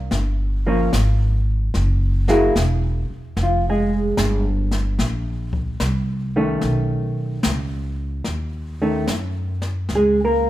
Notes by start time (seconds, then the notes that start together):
0.11 G1, brush sweep, snare
0.67 F3 A#3 C#4
0.93 G#1, snare, hi-hat pedal
1.74 F#1, brush sweep, snare
2.28 F#3 A#3 E4 G#4, snare
2.55 E1, snare, hi-hat pedal
3.10 muted upright bass stroke
3.36 F1, brush sweep, snare
3.43 F3 F4
3.70 G#3 G#4
4.17 G1, snare, hi-hat pedal
4.71 snare
4.99 A#1, brush sweep, snare
5.53 kick
5.80 C2, snare, hi-hat pedal
6.36 D#3 A3 C#4
6.61 B1, brush sweep, snare
7.43 C#2, snare, hi-hat pedal
8.24 D#2, brush sweep, snare
8.82 D#3 A3 C#4
9.07 F#2, snare, hi-hat pedal
9.62 snare
9.89 C#2, brush sweep, snare
9.95 G#3 G#4
10.25 A#3 A#4